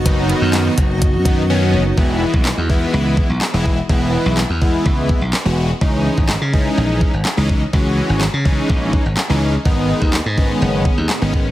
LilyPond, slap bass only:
\new Staff \with { instrumentName = "Slap bass" } { \clef bass \time 4/4 \key e \lydian \tempo 4 = 125 fis,,8. fis,8. fis,,8. fis,4~ fis,16 fis,,8 | e,,8. b,,8 e,8. cis,8. b,,16 r16 e,,8. | e,,8. b,,8 e,8. cis,8. b,,16 r16 e,,8. | cis,8. gis,,8 cis8. ais,,8. gis,,16 r16 cis,8. |
cis,8. gis,,8 cis8. ais,,8. gis,,16 r16 cis,8. | gis,,8. dis,8 gis,8. fis,,8. dis,16 r16 gis,,8. | }